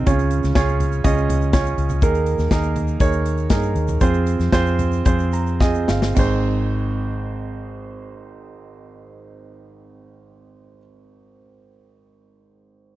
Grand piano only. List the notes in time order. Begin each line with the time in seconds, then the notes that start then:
0.06 C#3 C#4 F4 G#4 C#5
0.56 C#4 F4 G#4 C#5
1.04 C#4 F4 G#4 D#5
1.53 C#4 F4 G#4 C#5
2.03 D#3 A#3 D#4 G#4 A#4
2.51 A#3 D#4 G#4 A#4
3.01 A#3 D#4 G#4 C#5
3.50 A#3 D#4 G#4 A#4
4.01 C4 F4 G#4 C5
4.53 C4 F4 G#4 C5
5.06 C4 F4 G#4 C5
5.33 A#5
5.61 C4 F4 G#4 D#5 G#5
5.89 F5
6.15 G#1 C4 D#4 G#4
6.19 C5